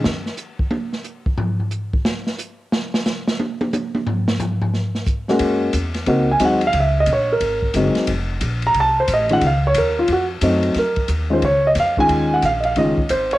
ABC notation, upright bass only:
X:1
M:4/4
L:1/8
Q:"Swing" 1/4=179
K:Bbm
V:1 name="Upright bass" clef=bass
G,, z6 z | z8 | z8 | z8 |
G,,2 _F,,2 D,,2 E,,2 | D,,2 B,,,2 A,,,2 G,,, z | F,,,2 B,,,2 C,,2 =A,,,2 | D,,2 E,,2 F,,2 G,,2 |
F,,2 E,,2 D,,2 F,,2 | E,,2 B,,,2 G,,, z A,,,2 |]